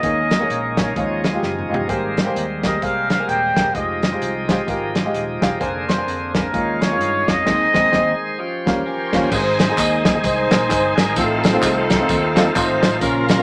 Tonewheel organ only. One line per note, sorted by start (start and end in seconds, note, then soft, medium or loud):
0.00 0.96 D#3 medium
0.00 3.71 G#3 medium
0.00 0.93 A#3 medium
0.00 0.95 C#4 medium
0.96 1.88 F3 medium
0.96 1.88 C#4 medium
0.96 1.88 D#4 medium
1.90 3.74 G3 medium
1.90 3.73 A#3 medium
1.90 3.74 C4 medium
3.75 5.59 F3 medium
3.75 5.59 G#3 medium
3.75 5.59 D#4 medium
3.75 5.59 G4 medium
5.60 6.53 D3 medium
5.60 6.53 A#3 medium
5.60 6.52 C4 medium
5.60 6.52 G#4 medium
6.53 7.45 D#3 medium
6.53 7.46 G#3 medium
6.53 7.46 C#4 medium
6.53 7.45 F4 medium
7.47 8.38 D#3 medium
7.47 8.38 G#3 medium
7.47 8.38 G#4 medium
7.47 9.30 C5 medium
8.39 9.31 F3 medium
8.39 9.31 C#4 medium
8.39 9.31 G4 medium
9.32 12.98 D#3 medium
9.32 11.15 G#3 medium
9.32 12.98 C4 medium
9.32 11.15 G#4 medium
11.18 13.00 A3 medium
11.18 13.43 F4 medium
13.02 13.43 C#3 medium
13.02 13.43 F3 medium
13.02 13.43 A#3 medium